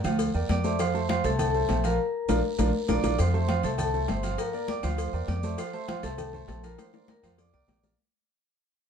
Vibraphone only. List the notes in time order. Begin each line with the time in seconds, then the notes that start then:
0.51 D5 D6
0.80 C5 C6
1.10 C5 C6
1.26 A4 A5
1.40 A4 A5
1.85 A#4 A#5
2.90 D5 D6
3.20 C5 C6
3.50 C5 C6
3.65 A4 A5
3.80 A4 A5
4.09 C5 C6
4.38 A#4 A#5
4.68 D5 D6
4.84 C5 C6
5.28 D5 D6
5.59 C5 C6
5.74 C5 C6
5.89 C5 C6
6.03 A4 A5
6.48 A4 A5
6.64 A#4 A#5
6.79 C5 C6
7.09 A#4 A#5
7.24 C5 C6
7.39 D5 D6
7.54 D5 D6